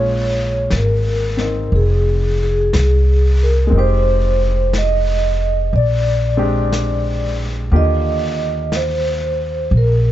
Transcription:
Already playing: A#1 G#3 A#3 C#4 F4 C#5
0.70 G#1, brush sweep, snare, hi-hat pedal
0.77 A#4
1.37 C4 D#4, snare
1.72 F1 G#4, brush sweep
2.43 G#4
2.73 C2, brush sweep, snare, hi-hat pedal
3.43 A#4
3.67 G#3 C4
3.72 F1 D#4, brush sweep
3.78 G4 C5
4.73 brush sweep, snare, hi-hat pedal
4.78 D#5
5.73 A#1 D5, brush sweep
6.37 G#3 C4 D4 G4
6.72 brush sweep, snare, hi-hat pedal
7.71 D#2 D3 A#3 F4 G4, brush sweep
7.76 D#5
8.72 C5, brush sweep, snare, hi-hat pedal
9.71 A#1, brush sweep
9.77 A#4

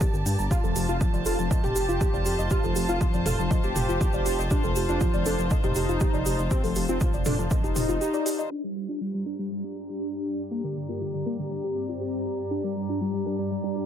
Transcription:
Already playing: G4 D5 A5
0.01 G4, kick, shaker
0.14 G1 G4, shaker
0.26 G2 G5, open hi-hat, shaker
0.39 G1 A#5, shaker
0.51 F4 G4, kick, closed hi-hat, shaker
0.64 F1 F3 A4, shaker
0.76 F1 F3 G4 C5, open hi-hat, shaker
0.89 F1 F4, closed hi-hat, shaker
1.01 F3 F4, kick, closed hi-hat, shaker
1.14 F1 F3 D5, closed hi-hat, shaker
1.26 F1 F4 A4, open hi-hat, shaker
1.39 F1 F3 A5, closed hi-hat, shaker
1.51 F3 D#5, kick, closed hi-hat, shaker
1.64 F1 G4, closed hi-hat, mid tom, shaker
1.76 F1 G4, open hi-hat, shaker
1.89 F1 F4, closed hi-hat, shaker
2.01 G4, kick, closed hi-hat, shaker
2.14 F1 D5, shaker
2.26 F1 G4, open hi-hat, shaker
2.39 F1 D#5, closed hi-hat, shaker
2.50 F4 G4, kick, closed hi-hat, shaker
2.64 F1 F3 A4, shaker
2.76 F1 F3 G4, open hi-hat, shaker
2.88 F1 F4, closed hi-hat, shaker
3.01 F3, kick, closed hi-hat, shaker
3.14 F1 F3 D5, closed hi-hat, shaker
3.26 F1 F4 A4, mid tom, open hi-hat, shaker
3.39 F1 F3 A5, closed hi-hat, shaker
3.51 F3 D#5, kick, closed hi-hat, shaker
3.63 F1 G4, closed hi-hat, shaker
3.76 F1 G4, mid tom, open hi-hat, shaker
3.89 F1 F4, closed hi-hat, shaker
4.01 G4, kick, closed hi-hat, shaker
4.13 F1 D5, shaker
4.26 F1 G4, open hi-hat, shaker
4.39 F1 D#5, closed hi-hat, shaker
4.51 D4 G4, kick, closed hi-hat, shaker
4.64 F1 F3 A4, shaker
4.76 F1 F3 G4, open hi-hat, shaker
4.89 F1 D4 F4, closed hi-hat, shaker
5.01 F3 F4, kick, closed hi-hat, shaker
5.14 F1 F3 D5, closed hi-hat, shaker
5.26 F1 D4 A4, open hi-hat, shaker
5.39 F1 F3 A5, closed hi-hat, shaker
5.50 F3 D#5, kick, closed hi-hat, shaker
5.64 F1 D#4 G4, closed hi-hat, mid tom, shaker
5.75 F1 G4, open hi-hat, shaker
5.89 F1 F4, closed hi-hat, shaker
6.00 G4, kick, closed hi-hat, shaker
6.14 F1 D5, shaker
6.26 F1 G4, open hi-hat, shaker
6.39 F1 D#5, closed hi-hat, shaker
6.51 C4 G4, kick, closed hi-hat, shaker
6.64 F1 F3 A4, open hi-hat, shaker
6.75 F1 F3 G4, open hi-hat, shaker
6.88 F1 C4 F4, closed hi-hat, shaker
7.01 F3 F4, kick, closed hi-hat, shaker
7.13 F1 F3 D5, closed hi-hat, shaker
7.25 F1 D4 A4, mid tom, open hi-hat, shaker
7.39 F1 F3 A5, closed hi-hat, shaker
7.51 D#5, kick, closed hi-hat, shaker
7.63 F1 D#4 G4, closed hi-hat, shaker
7.76 F1 G4, mid tom, open hi-hat, shaker
7.89 F1 F4, closed hi-hat, shaker
8.01 G4, closed hi-hat, shaker
8.14 D5, closed hi-hat, shaker
8.26 G4, open hi-hat, shaker
8.39 D#5, closed hi-hat, shaker
8.51 G2 G3 D4 G4, closed hi-hat, downlifter
8.64 G3 A#4
8.76 G3 G4, closed hi-hat
8.88 D4 F4 A#5
9.01 G3 F4
9.14 G3 D5
9.26 D4 A#4 D5, closed hi-hat
9.39 G3 A#5
9.51 G3 D5
9.64 D4 G4
9.76 G4, closed hi-hat
9.89 F4
10.01 G4, closed hi-hat
10.14 D5
10.26 G4, closed hi-hat
10.39 D5, closed hi-hat
10.51 A#3 G4
10.64 D3 A#4
10.76 D3 G4, closed hi-hat
10.89 A#3 F4, closed hi-hat
11.01 D3 F4, closed hi-hat
11.14 D3 D5
11.26 A#3 A#4, closed hi-hat
11.39 D3 A#5
11.51 D3 D5
11.64 C4 G4
11.76 G4, closed hi-hat
11.89 F4, closed hi-hat
12.01 G4, closed hi-hat
12.14 D5
12.26 G4, closed hi-hat
12.39 D5
12.51 D4 G4, closed hi-hat
12.64 G3 A#4
12.76 G3 G4, closed hi-hat
12.89 D4 F4, closed hi-hat
13.01 G3 F4, closed hi-hat
13.14 G3 D5, closed hi-hat
13.26 D4 A#4, closed hi-hat
13.39 G3 A#5, closed hi-hat
13.51 G3 D5, closed hi-hat
13.63 D4 G4, closed hi-hat
13.76 G4, closed hi-hat

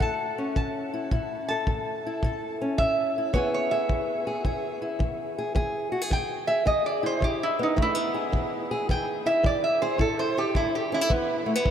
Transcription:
Already playing: A3 E4
0.00 A2 A4 A5, kick
0.38 C#4
0.56 A2 A5, kick
0.94 E4
1.11 A2 E4, kick
1.49 A4 A5
1.67 A2, kick
2.06 E4
2.23 A2 A4, kick
2.61 C#4
2.78 A2 E5, kick
3.18 E4
3.33 E3 B3 E4 G#4 C#5, kick
3.54 C#5
3.71 G#4 E5
3.89 E3, kick
4.27 G#4
4.45 E3 G#4, kick
4.82 E4
4.99 E3, kick
5.38 G#4
5.55 E3 G#4, kick
5.92 F#4
6.02 G#4
6.10 E3 G5, kick
6.47 G#4 E5
6.66 E3 G#4 D#5, kick
6.86 D5
7.03 E4 C5
7.20 E3 G4, kick
7.43 E4
7.59 B3 D#4
7.76 E3 A3, kick
7.82 E4
7.95 B3
8.14 G#4
8.32 E3, kick
8.71 G#4
8.89 E3 G#4 G5, kick
9.26 E4 E5
9.43 E3 D5, kick
9.64 E5
9.82 G#4 C5
9.98 A2 E4 A4, kick
10.19 C5
10.37 G4 A4
10.55 A2 E4, kick
10.75 G4
10.92 C#4 E4
11.01 E4
11.10 E3 B3, kick
11.46 A3
11.55 B3
11.65 E3, kick

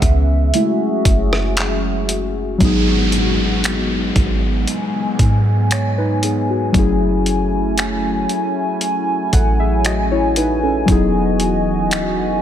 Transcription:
Already playing: C#3 G#3 B3 C#4 G#4 E5
0.02 C#2, kick, closed hi-hat
0.53 F#3 G#3 A3 C#4 E4 F#4 G#4, closed hi-hat
1.05 F#1, kick, closed hi-hat
1.33 cross-stick
1.57 clap, closed hi-hat
2.09 closed hi-hat
2.58 G#1 F#3 G#3 B3 F#4, kick, closed hi-hat, downlifter
2.63 D#4 G#4
3.12 closed hi-hat
3.64 finger snap, closed hi-hat
4.16 G#1, kick, closed hi-hat
4.67 G#5, closed hi-hat
5.19 G#2, kick, closed hi-hat
5.71 C#5, finger snap, closed hi-hat
5.98 D#4 B4
6.23 B3 G#4, closed hi-hat
6.50 F#4
6.72 F#1 F#3 A3 C#4 E4, kick, closed hi-hat
6.77 E4 G#4
7.26 closed hi-hat
7.78 finger snap, closed hi-hat
8.29 closed hi-hat
8.81 closed hi-hat
9.33 A1 A4 F#5, kick, closed hi-hat
9.60 G#4 E5
9.85 F#4 D#5, finger snap, closed hi-hat
10.11 E4 C#5
10.36 D#4 B4, closed hi-hat
10.63 C#4 A4
10.86 E1 E3 F#3 B3 D#4 F#4 D#5, kick, closed hi-hat
10.90 E4 G#4
11.40 closed hi-hat
11.91 D#1, finger snap, closed hi-hat
12.18 E1

